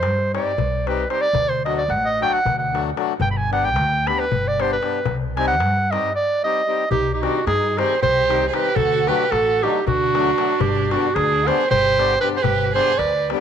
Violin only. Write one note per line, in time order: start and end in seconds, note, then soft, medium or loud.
6.91 7.13 D#4 medium
7.14 7.25 D#4 soft
7.23 7.47 D4 medium
7.48 7.81 D#4 medium
7.80 8.02 G#4 medium
8.03 8.44 G4 medium
8.49 8.56 G#4 medium
8.54 8.78 G4 medium
8.76 9.10 F#4 medium
9.08 9.33 G4 medium
9.32 9.66 F#4 medium
9.64 9.87 D#4 medium
9.88 10.60 D4 medium
10.60 10.92 D4 medium
10.92 11.15 D4 medium
11.15 11.49 D4 medium
11.47 11.70 G#4 medium
11.71 12.18 G4 loud
12.22 12.29 G4 medium
12.37 12.44 G#4 medium
12.43 12.73 G4 medium
12.73 13.00 G#4 medium
12.99 13.30 B4 medium